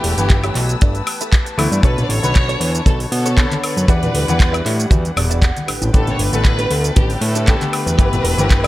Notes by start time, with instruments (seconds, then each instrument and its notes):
Already playing: grand piano E3 A3 B3 G4, clean electric guitar E4 G4 A4 B4, violin section G4, string section B4 A5 E6
0.04 analog synth bass E1, open hi-hat
0.17 analog synth bass G1, grand piano E3 A3 B3 G4, closed hi-hat, shaker
0.30 kick, clap, closed hi-hat, shaker
0.44 clean electric guitar E4 G4 A4 C#5, closed hi-hat, high woodblock, shaker
0.55 analog synth bass B1, clap, open hi-hat
0.69 closed hi-hat, shaker
0.81 analog synth bass G1, clean electric guitar E4 G4 A4 D5, kick, closed hi-hat, shaker
0.95 closed hi-hat, shaker
1.07 muted clean electric guitar stroke, open hi-hat, high woodblock
1.21 clean electric guitar E4 G4 A4 B4, closed hi-hat, shaker
1.33 kick, clap, closed hi-hat, shaker
1.46 muted clean electric guitar stroke, closed hi-hat, shaker
1.57 analog synth bass D2, grand piano E3 A3 B3 E4, muted clean electric guitar stroke, open hi-hat, high woodblock
1.71 analog synth bass G2, closed hi-hat, shaker
1.83 analog synth bass B1, grand piano D3 B3 A4 C#5, clean electric guitar D4 A4 B4 C#5, violin section B4, string section C#5, kick, closed hi-hat, cabasa, shaker
1.97 closed hi-hat, low conga, cabasa, shaker
2.03 violin section D5
2.09 analog synth bass A1, violin section C#5, open hi-hat
2.22 analog synth bass B1, grand piano D3 B3 B4 C#5, closed hi-hat, high conga, cabasa, shaker
2.35 kick, clap, closed hi-hat, cabasa, shaker
2.49 clean electric guitar D4 A4 B4 C#5, closed hi-hat, cabasa, shaker
2.60 analog synth bass E2, open hi-hat
2.74 closed hi-hat, cabasa, shaker
2.86 analog synth bass B1, clean electric guitar D4 A4 B4 C#5, violin section A4, kick, closed hi-hat, high conga, cabasa, shaker
3.00 open hi-hat, cabasa, shaker
3.12 analog synth bass B2, violin section A4, muted clean electric guitar stroke, open hi-hat
3.26 clean electric guitar D4 A4 B4 C#5, closed hi-hat, cabasa, shaker
3.37 grand piano D3 B3 A4 C#5, kick, clap, closed hi-hat, cabasa, shaker
3.51 muted clean electric guitar stroke, clap, closed hi-hat, high conga, cabasa, shaker
3.63 violin section B4, muted clean electric guitar stroke, open hi-hat, high woodblock
3.77 analog synth bass F#2, closed hi-hat, cabasa, shaker
3.88 analog synth bass E2, grand piano E3 G3 D4 F#5, string section G3 F#5, clean electric guitar E4 F#4 G4 D5, kick, closed hi-hat, cabasa, shaker
4.03 closed hi-hat, low conga, cabasa, shaker
4.14 analog synth bass D2, open hi-hat
4.27 analog synth bass E2, grand piano E3 G3 D4 F#5, closed hi-hat, high conga, cabasa, shaker
4.40 kick, clap, closed hi-hat, cabasa, shaker
4.53 clean electric guitar E4 F#4 G4 D5, closed hi-hat, cabasa, high woodblock, shaker
4.66 analog synth bass A2, clap, open hi-hat
4.80 closed hi-hat, cabasa, shaker
4.90 analog synth bass E2, clean electric guitar E4 F#4 G4 D5, kick, closed hi-hat, high conga, cabasa, shaker
5.05 closed hi-hat, cabasa, shaker
5.16 analog synth bass E1, clean electric guitar D5, muted clean electric guitar stroke, open hi-hat, low conga, high woodblock
5.30 clean electric guitar E4 F#4 G4 D5, closed hi-hat, cabasa, shaker
5.42 clean electric guitar F#5, kick, clap, closed hi-hat, cabasa, shaker
5.56 muted clean electric guitar stroke, closed hi-hat, high conga, cabasa, shaker
5.68 analog synth bass A1, clean electric guitar D4 G4 A4 B4, string section B4 G5, open hi-hat, high woodblock
5.82 analog synth bass A1, closed hi-hat, low conga, cabasa, shaker
5.93 analog synth bass A1, grand piano D3 A3 B3 G4, violin section A4, kick, closed hi-hat, cabasa, shaker
6.07 closed hi-hat, low conga, cabasa, shaker
6.13 violin section C#5
6.19 analog synth bass G1, violin section B4, open hi-hat
6.32 analog synth bass A1, grand piano D3 A3 B3 A4, closed hi-hat, high conga, cabasa, shaker
6.45 kick, clap, closed hi-hat, cabasa, shaker
6.59 clean electric guitar D4 G4 A4 B4, closed hi-hat, cabasa, shaker
6.71 analog synth bass D2, open hi-hat
6.84 closed hi-hat, cabasa, shaker
6.96 analog synth bass A1, clean electric guitar D4 G4 A4 B4, violin section G4, kick, closed hi-hat, high conga, cabasa, shaker
7.10 open hi-hat, cabasa, shaker
7.21 analog synth bass A2, violin section A4, muted clean electric guitar stroke, open hi-hat
7.35 clean electric guitar D4 G4 A4 B4, closed hi-hat, cabasa, shaker
7.47 grand piano D3 A3 B3 G4, kick, clap, closed hi-hat, cabasa, shaker
7.61 muted clean electric guitar stroke, clap, closed hi-hat, high conga, cabasa, shaker
7.73 violin section B4, muted clean electric guitar stroke, open hi-hat, high woodblock
7.86 analog synth bass E2, closed hi-hat, cabasa, shaker
7.98 analog synth bass G1, grand piano E3 A3 B3 G4, clean electric guitar E4 G4 A4 B4, string section A5 E6, kick, closed hi-hat, cabasa, shaker
8.13 closed hi-hat, low conga, cabasa, shaker
8.24 analog synth bass E1, open hi-hat
8.37 analog synth bass G1, grand piano E3 A3 B3 G4, closed hi-hat, high conga, cabasa, shaker
8.50 kick, clap, closed hi-hat, cabasa, shaker
8.63 clean electric guitar E4 A4 D5, closed hi-hat, cabasa, high woodblock